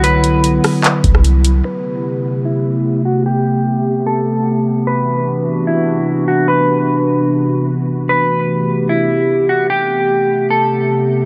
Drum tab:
HH |x-x-x-o-x-x-x-x-|----------------|----------------|----------------|
CP |--------x-------|----------------|----------------|----------------|
SD |------r----r----|----------------|----------------|----------------|
BD |----------o-----|----------------|----------------|----------------|

HH |----------------|----------------|----------------|
CP |----------------|----------------|----------------|
SD |----------------|----------------|----------------|
BD |----------------|----------------|----------------|